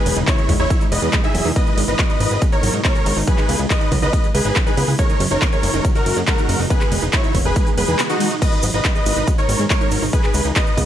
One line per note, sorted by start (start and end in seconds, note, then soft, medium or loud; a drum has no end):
0.00 0.17 G#4 medium
0.00 0.17 B4 loud
0.06 0.13 E1 medium
0.06 0.13 F#3 loud
0.06 open hi-hat loud
0.06 ride medium
0.17 0.24 E1 medium
0.17 0.24 D#4 loud
0.27 0.32 B3 medium
0.27 0.52 E4 medium
0.27 0.52 C#5 loud
0.27 0.52 C#5 medium
0.27 kick loud
0.27 clap loud
0.27 closed hi-hat medium
0.27 ride medium
0.38 0.42 G#4 medium
0.38 closed hi-hat soft
0.49 0.56 E1 loud
0.49 0.56 G#3 loud
0.49 kick medium
0.49 open hi-hat medium
0.49 ride medium
0.59 0.67 E1 medium
0.59 0.70 D#4 loud
0.59 0.84 E4 medium
0.59 0.84 C#5 medium
0.59 0.84 C#5 loud
0.59 closed hi-hat soft
0.70 0.78 F#3 loud
0.70 kick loud
0.70 closed hi-hat medium
0.70 ride medium
0.81 0.88 D#4 loud
0.81 closed hi-hat soft
0.91 0.99 E1 loud
0.91 0.96 B3 medium
0.91 1.16 B4 medium
0.91 1.16 D#5 loud
0.91 1.16 D#5 medium
0.91 open hi-hat loud
0.91 ride medium
1.02 1.09 E2 medium
1.02 1.07 G#4 medium
1.13 1.20 G#3 loud
1.13 kick loud
1.13 clap loud
1.13 closed hi-hat medium
1.13 ride medium
1.24 1.34 D#4 loud
1.24 1.48 G#4 medium
1.24 1.48 E5 loud
1.24 1.48 E5 medium
1.24 closed hi-hat soft
1.34 1.41 E1 loud
1.34 1.42 F#3 loud
1.34 open hi-hat loud
1.34 ride medium
1.45 1.52 E2 medium
1.45 1.52 D#4 loud
1.56 1.60 B3 medium
1.56 1.80 B4 medium
1.56 1.80 D#5 loud
1.56 kick loud
1.56 closed hi-hat medium
1.56 ride medium
1.67 1.71 G#4 medium
1.67 closed hi-hat soft
1.77 1.84 G#1 medium
1.77 1.85 G#3 loud
1.77 open hi-hat loud
1.77 ride medium
1.88 1.95 G#1 medium
1.88 1.98 D#4 loud
1.88 2.04 B4 medium
1.88 2.04 D#5 medium
1.88 closed hi-hat soft
1.99 2.06 F#3 loud
1.99 kick loud
1.99 clap loud
1.99 closed hi-hat medium
1.99 ride medium
2.09 2.17 D#4 loud
2.09 2.42 B4 medium
2.09 2.42 D#5 loud
2.09 2.42 D#5 medium
2.09 closed hi-hat soft
2.20 2.27 G#1 loud
2.20 2.25 B3 medium
2.20 open hi-hat medium
2.20 ride medium
2.31 2.38 G#1 medium
2.31 2.35 G#4 medium
2.31 closed hi-hat soft
2.41 2.49 G#3 loud
2.41 kick loud
2.41 closed hi-hat medium
2.41 ride medium
2.52 2.63 D#4 loud
2.52 2.77 A#4 medium
2.52 2.77 C#5 loud
2.52 2.77 C#5 medium
2.52 closed hi-hat soft
2.63 2.70 G#1 loud
2.63 2.70 F#3 loud
2.63 open hi-hat loud
2.63 ride medium
2.74 2.81 G#2 medium
2.74 2.81 D#4 loud
2.74 closed hi-hat soft
2.84 2.89 B3 medium
2.84 3.17 A#4 medium
2.84 3.17 C#5 loud
2.84 kick loud
2.84 clap loud
2.84 closed hi-hat medium
2.84 ride medium
2.95 3.00 G#4 medium
2.95 closed hi-hat soft
3.06 3.13 G#1 loud
3.06 3.13 G#3 loud
3.06 open hi-hat loud
3.06 ride medium
3.17 3.24 G#1 medium
3.17 3.27 D#4 loud
3.27 3.35 F#3 loud
3.27 3.60 G#4 medium
3.27 3.60 B4 loud
3.27 3.60 B4 medium
3.27 kick loud
3.27 closed hi-hat medium
3.27 ride medium
3.38 3.45 D#4 loud
3.38 clap soft
3.38 closed hi-hat soft
3.49 3.56 C#2 medium
3.49 3.53 B3 medium
3.49 open hi-hat loud
3.49 ride medium
3.59 3.66 C#2 medium
3.59 3.64 G#4 medium
3.59 closed hi-hat soft
3.70 3.78 G#3 loud
3.70 3.95 B4 medium
3.70 3.94 D#5 loud
3.70 3.95 D#5 loud
3.70 kick loud
3.70 clap loud
3.70 closed hi-hat loud
3.70 ride medium
3.81 3.91 D#4 loud
3.81 closed hi-hat soft
3.92 3.99 C#2 loud
3.92 3.99 F#3 loud
3.92 kick medium
3.92 open hi-hat medium
3.92 ride medium
4.02 4.09 C#2 medium
4.02 4.10 D#4 loud
4.02 4.27 B4 medium
4.02 4.27 D#5 loud
4.02 closed hi-hat soft
4.13 4.17 B3 medium
4.13 kick loud
4.13 closed hi-hat loud
4.13 ride medium
4.24 4.28 G#4 medium
4.24 closed hi-hat soft
4.34 4.41 C#2 medium
4.34 4.42 G#3 loud
4.34 4.59 G#4 medium
4.34 4.59 B4 medium
4.34 4.59 B4 loud
4.34 open hi-hat loud
4.34 ride medium
4.45 4.52 G#1 medium
4.45 4.55 D#4 loud
4.45 closed hi-hat soft
4.56 4.63 F#3 loud
4.56 kick loud
4.56 clap loud
4.56 closed hi-hat medium
4.56 ride medium
4.67 4.74 D#4 loud
4.67 4.91 G#4 medium
4.67 4.91 B4 loud
4.67 4.91 B4 medium
4.67 closed hi-hat soft
4.77 4.84 C#2 loud
4.77 4.82 B3 medium
4.77 open hi-hat medium
4.77 ride medium
4.88 4.95 C#2 medium
4.88 4.92 G#4 medium
4.99 5.06 G#3 loud
4.99 5.23 A#4 medium
4.99 5.23 C#5 loud
4.99 kick loud
4.99 closed hi-hat loud
4.99 ride medium
5.09 5.20 D#4 loud
5.09 closed hi-hat soft
5.20 5.27 F#1 medium
5.20 5.28 F#3 loud
5.20 open hi-hat loud
5.20 ride medium
5.31 5.38 F#1 medium
5.31 5.38 D#4 loud
5.31 5.47 A#4 medium
5.31 5.47 C#5 medium
5.31 closed hi-hat soft
5.42 5.46 A#3 medium
5.42 kick loud
5.42 clap loud
5.42 closed hi-hat loud
5.42 ride medium
5.53 5.57 G#4 medium
5.53 5.85 A#4 medium
5.53 5.85 C#5 loud
5.53 5.85 C#5 medium
5.53 closed hi-hat soft
5.63 5.70 F#1 medium
5.63 5.70 G#3 loud
5.63 open hi-hat medium
5.63 ride medium
5.74 5.81 F#1 medium
5.74 5.84 D#4 loud
5.85 5.92 F#3 loud
5.85 kick loud
5.85 closed hi-hat loud
5.85 ride medium
5.95 6.03 D#4 loud
5.95 6.20 F#4 medium
5.95 6.19 A#4 loud
5.95 6.20 A#4 loud
5.95 closed hi-hat soft
6.06 6.13 F#1 loud
6.06 6.10 A#3 medium
6.06 open hi-hat loud
6.06 ride medium
6.17 6.24 F#2 medium
6.17 6.21 G#4 medium
6.17 closed hi-hat soft
6.27 6.35 G#3 loud
6.27 6.60 F#4 medium
6.27 6.60 A#4 loud
6.27 kick loud
6.27 clap loud
6.27 closed hi-hat loud
6.27 ride medium
6.38 6.48 D#4 loud
6.38 closed hi-hat soft
6.49 6.56 F#1 loud
6.49 6.56 F#3 loud
6.49 open hi-hat medium
6.49 ride medium
6.59 6.67 F#1 medium
6.59 6.67 D#4 loud
6.70 6.75 B3 medium
6.70 7.02 G#4 medium
6.70 7.02 B4 loud
6.70 kick loud
6.70 closed hi-hat loud
6.70 ride medium
6.81 6.85 G#4 medium
6.81 clap soft
6.81 closed hi-hat soft
6.92 6.99 E1 medium
6.92 6.99 G#3 loud
6.92 open hi-hat loud
6.92 ride medium
7.03 7.09 E1 medium
7.03 7.13 D#4 loud
7.03 closed hi-hat soft
7.13 7.20 F#3 loud
7.13 7.37 E4 medium
7.13 7.37 C#5 loud
7.13 kick loud
7.13 clap loud
7.13 closed hi-hat loud
7.13 ride medium
7.24 7.31 D#4 loud
7.24 closed hi-hat soft
7.35 7.42 E1 loud
7.35 7.39 B3 medium
7.35 kick medium
7.35 open hi-hat medium
7.35 ride medium
7.45 7.52 E1 medium
7.45 7.50 G#4 medium
7.45 7.69 G#4 medium
7.45 7.69 B4 medium
7.45 7.70 B4 medium
7.45 closed hi-hat soft
7.56 7.63 G#3 loud
7.56 kick loud
7.56 closed hi-hat loud
7.56 ride medium
7.56 swell medium
7.67 7.77 D#4 loud
7.67 closed hi-hat soft
7.77 7.84 E1 loud
7.77 7.85 F#3 loud
7.77 8.02 G#4 medium
7.77 8.02 B4 medium
7.77 open hi-hat loud
7.77 ride medium
7.88 7.95 E2 medium
7.88 7.95 D#4 loud
7.88 closed hi-hat soft
7.99 8.03 B3 medium
7.99 clap loud
7.99 closed hi-hat loud
7.99 ride medium
8.10 8.34 D#4 medium
8.10 8.34 F#4 loud
8.10 8.34 F#4 medium
8.10 8.14 G#4 medium
8.10 closed hi-hat soft
8.20 8.28 G#3 loud
8.20 open hi-hat medium
8.20 ride medium
8.31 8.41 D#4 loud
8.31 closed hi-hat soft
8.42 8.49 G#3 loud
8.42 8.66 B4 medium
8.42 8.66 D#5 loud
8.42 kick loud
8.42 closed hi-hat loud
8.42 crash medium
8.42 ride medium
8.42 cabasa medium
8.53 8.63 D#4 loud
8.53 closed hi-hat soft
8.63 8.70 G#1 loud
8.63 8.71 F#3 loud
8.63 open hi-hat loud
8.63 ride medium
8.63 cabasa loud
8.74 8.81 G#1 medium
8.74 8.81 D#4 loud
8.74 8.90 B4 medium
8.74 8.90 D#5 medium
8.74 cabasa soft
8.85 8.89 B3 medium
8.85 kick loud
8.85 clap loud
8.85 closed hi-hat loud
8.85 cabasa medium
8.95 9.00 G#4 medium
8.95 9.27 B4 medium
8.95 9.27 D#5 loud
8.95 9.28 D#5 medium
8.95 closed hi-hat soft
9.06 9.13 G#1 loud
9.06 9.13 G#3 loud
9.06 open hi-hat medium
9.06 ride medium
9.06 cabasa medium
9.17 9.24 G#1 medium
9.17 9.27 D#4 loud
9.17 closed hi-hat soft
9.17 cabasa soft
9.27 9.35 F#3 loud
9.27 kick loud
9.27 closed hi-hat loud
9.27 ride medium
9.27 cabasa medium
9.38 9.45 D#4 loud
9.38 9.62 A#4 medium
9.38 9.62 C#5 medium
9.38 9.62 C#5 loud
9.38 closed hi-hat soft
9.49 9.56 G#1 loud
9.49 9.53 B3 medium
9.49 open hi-hat loud
9.49 ride medium
9.49 cabasa medium
9.59 9.66 G#2 medium
9.59 9.64 G#4 medium
9.59 cabasa soft
9.70 9.78 G#3 loud
9.70 10.03 A#4 medium
9.70 10.03 C#5 loud
9.70 kick loud
9.70 clap loud
9.70 closed hi-hat loud
9.70 cabasa medium
9.81 9.91 D#4 loud
9.81 closed hi-hat soft
9.91 9.99 G#1 loud
9.91 9.99 F#3 loud
9.91 open hi-hat medium
9.91 ride medium
9.91 cabasa medium
10.02 10.09 G#1 medium
10.02 10.10 D#4 loud
10.02 cabasa soft
10.13 10.18 B3 medium
10.13 10.45 G#4 medium
10.13 10.45 B4 loud
10.13 kick loud
10.13 closed hi-hat loud
10.13 ride medium
10.13 cabasa medium
10.24 10.28 G#4 medium
10.24 clap soft
10.24 closed hi-hat soft
10.34 10.41 C#2 loud
10.34 10.42 G#3 loud
10.34 open hi-hat loud
10.34 ride medium
10.34 cabasa medium
10.45 10.52 C#2 medium
10.45 10.56 D#4 loud
10.45 closed hi-hat soft
10.45 cabasa soft
10.55 10.63 F#3 loud
10.55 10.80 B4 medium
10.55 10.80 D#5 loud
10.55 10.80 D#5 medium
10.55 kick loud
10.55 clap loud
10.55 closed hi-hat loud
10.55 cabasa medium
10.67 10.74 D#4 loud
10.67 closed hi-hat soft
10.77 10.84 C#2 loud
10.77 10.82 B3 medium
10.77 kick medium
10.77 open hi-hat loud
10.77 ride medium
10.77 cabasa medium